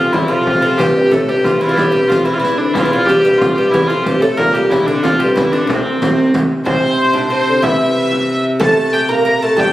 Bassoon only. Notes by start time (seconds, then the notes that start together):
Already playing: F2
0.15 E2
0.32 F2
0.64 F2
0.80 G2
0.97 G2
1.14 A2
1.30 G2
1.63 E2
1.79 G2
1.86 A2
1.93 G2
2.12 F2
2.29 E2
2.40 E2
2.59 D2
2.75 E2
2.84 E2
3.24 G2
3.42 F2
3.58 G2
3.74 E2
3.89 F2
4.07 G2
4.22 A2
4.39 A#2
4.73 E2
5.06 F2
5.23 G2
5.65 D2
5.70 C2
6.66 C3
7.32 C3
7.49 D3
7.64 E3
8.62 A3
8.79 A3
9.11 A#3
9.28 A#3
9.43 A3
9.59 G3